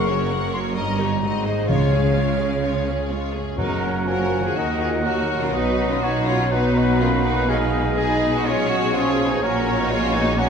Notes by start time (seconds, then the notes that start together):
Already playing: F#1 F#2 C#4 A#4 C#6
0.00 A#3
0.07 C#4 F#4 C#5
0.15 C#4
0.29 A#3 A#4 C#5 F#5
0.45 C#4
0.52 C#4 F#4 C#5 C6
0.61 A#3
0.75 G1 G2 C#4 A#4 D#5 A#5
0.91 A#3
0.98 D#4 G4 C#5
1.07 D#4 C#5
1.21 G#1 G#2 C4 F#4 D#5
1.38 G#3
1.44 D#4 G#4 C5 D#5
1.54 F#4 C5
1.68 C#2 C#3 G#3 F4 C#5 F5
1.85 G#3
1.92 C#4 G#4
2.02 F4
2.15 G#3 F4 C#5
2.33 F4
2.39 C#4 G#4
2.48 G#3
2.63 G#3 C#4 F4 C#5
2.80 G#3
2.86 C#4 G#4
2.95 F4
3.09 G#3 F4 C#5
3.27 F4
3.34 C#4 G#4
3.40 F#2 G#3
3.45 A#3
3.49 F#4
3.54 A#4 C#5 F#5
3.58 F#1 F#2 F#3 B3 C#4 D#4 F#4 A#4 A#5
3.82 A#3 C#4
4.06 F3 C#4 F#4 A#4 C#5 G#5
4.39 D#3
4.43 A#3 F4 G#4
4.48 F#4
4.52 D#3 D#4 D#5 F#5
4.57 D#2 D#4 F#4 A#4 D#5
4.80 F4 G#4
5.04 F#3 D#4 F#4 A#4
5.36 B2
5.41 B3 C#4 F4
5.45 F#4
5.49 B3 D#4 D#5
5.54 B1 B2 D#4 F#4 B4
5.89 C#4 F4
6.02 D#4 F#4 B4 C#5 F#5
6.27 C#4 F4
6.51 B3 D#4 F#4 B4 B5
6.77 F#5
7.00 A#3 C#4 F4
7.24 B3 D#4
7.32 B2
7.36 B3
7.41 G#4
7.45 G#3 C#4 D#5
7.49 A#3 D#4 G#4 B4 D#5 F5 G#5
7.73 G#3 B3
7.97 D#4 G#4 B4 D#5 G#5
8.28 B2
8.33 C#4 D#4 F#4
8.37 G#4
8.42 C#5
8.46 G#3 C#4 F4 G#4 C#5 G#5
8.70 D#4 F#4
8.94 F3 C#4 F4 G#4 C#5
9.25 A#2
9.30 B3 C#4 D#4
9.34 F#4
9.38 A#3 C#5
9.43 A#1 A#2 F#3 C#4 F#4 A#4 C#5 A#5
9.79 B3 D#4
9.89 G#3 C#4 F4 C#5
10.14 B3 D#4
10.37 F#3 A#3 C#4 F#4 C#5 F#5 A#5